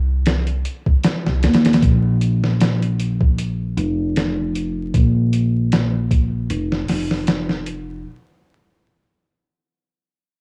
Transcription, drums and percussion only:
0.26 snare, closed hi-hat
0.47 closed hi-hat
0.65 closed hi-hat
0.86 kick
1.03 snare, closed hi-hat
1.26 snare
1.43 snare, closed hi-hat
1.54 snare, closed hi-hat
1.65 snare, closed hi-hat
1.73 snare, closed hi-hat
1.82 kick, closed hi-hat
2.21 closed hi-hat
2.44 snare
2.60 snare, closed hi-hat
2.82 closed hi-hat
3.00 closed hi-hat
3.21 kick
3.38 closed hi-hat
3.78 closed hi-hat
4.16 snare, closed hi-hat
4.55 closed hi-hat
4.94 kick, closed hi-hat
5.33 closed hi-hat
5.72 snare, closed hi-hat
6.11 kick, closed hi-hat
6.50 closed hi-hat
6.72 snare
6.88 snare, open hi-hat
7.11 snare
7.27 snare, closed hi-hat
7.49 snare
7.66 closed hi-hat

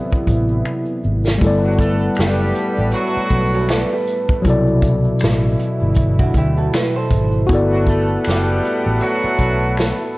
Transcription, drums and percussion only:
0.10 kick, shaker
0.27 kick, closed hi-hat, shaker
0.49 shaker
0.66 finger snap, shaker
0.86 shaker
1.04 shaker
1.24 snare, shaker
1.39 kick, closed hi-hat, shaker
1.63 shaker
1.79 kick, closed hi-hat
2.00 shaker
2.15 finger snap, closed hi-hat, shaker
2.20 snare
2.39 shaker
2.55 closed hi-hat, shaker
2.76 shaker
2.91 closed hi-hat, shaker
3.14 shaker
3.30 kick, closed hi-hat, shaker
3.52 shaker
3.69 finger snap, snare, closed hi-hat, shaker
3.89 shaker
4.07 closed hi-hat, shaker
4.27 kick, shaker
4.43 kick, closed hi-hat, shaker
4.67 shaker
4.82 kick, closed hi-hat
5.04 shaker
5.19 finger snap, closed hi-hat, shaker
5.24 snare
5.43 shaker
5.59 closed hi-hat, shaker
5.80 shaker
5.95 kick, closed hi-hat, shaker
6.18 kick, shaker
6.34 kick, closed hi-hat, shaker
6.57 shaker
6.74 finger snap, snare, closed hi-hat, shaker
6.93 shaker
7.11 kick, closed hi-hat, shaker
7.32 shaker
7.47 kick, closed hi-hat, shaker
7.71 shaker
7.87 kick, closed hi-hat
8.07 shaker
8.24 finger snap, closed hi-hat, shaker
8.29 snare
8.46 shaker
8.63 closed hi-hat, shaker
8.84 shaker
9.00 closed hi-hat, shaker
9.22 shaker
9.39 kick, closed hi-hat, shaker
9.60 shaker
9.77 finger snap, snare, closed hi-hat, shaker
9.97 shaker

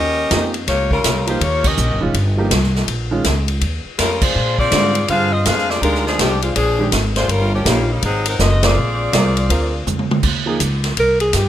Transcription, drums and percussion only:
0.31 snare, hi-hat pedal, ride
0.54 ride
0.67 snare, ride
0.91 kick
1.04 snare, hi-hat pedal, ride
1.27 ride
1.41 ride
1.64 kick, crash
1.77 hi-hat pedal
2.14 ride
2.51 snare, hi-hat pedal, ride
2.63 snare
2.75 snare
2.88 ride
3.24 snare, hi-hat pedal, ride
3.48 ride
3.61 ride
3.99 snare, hi-hat pedal, ride
4.22 kick, crash
4.58 kick
4.72 snare, hi-hat pedal, ride
4.95 ride
5.08 ride
5.45 snare, hi-hat pedal, ride
5.58 snare
5.70 snare
5.83 ride
5.95 snare
6.07 snare
6.19 snare, hi-hat pedal, ride
6.42 ride
6.56 ride
6.92 snare, hi-hat pedal, ride
7.16 snare, ride
7.29 ride
7.66 snare, hi-hat pedal, ride
8.03 ride
8.26 ride
8.39 snare, hi-hat pedal
8.63 snare, ride
9.13 snare, hi-hat pedal, ride
9.37 ride
9.50 ride
9.87 hi-hat pedal, mid tom
9.99 mid tom
10.11 mid tom
10.23 kick, crash
10.60 hi-hat pedal, ride
10.84 snare, ride
10.97 ride
11.20 ride
11.33 snare, hi-hat pedal, ride

